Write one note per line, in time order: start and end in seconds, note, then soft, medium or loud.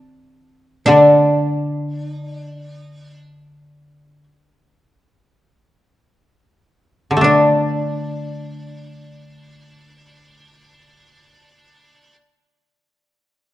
0.00 0.89 D#3 medium
0.00 0.77 C4 soft
0.00 0.84 D4 medium
0.86 4.26 D3 medium
0.86 2.09 D4 medium
2.09 2.34 D#4 medium
2.34 2.77 D4 medium
2.77 3.02 D#4 medium
3.02 4.24 D4 medium
7.11 12.06 D3 soft
7.17 12.12 A3 soft
7.21 12.16 D4 soft
7.21 12.15 D4 medium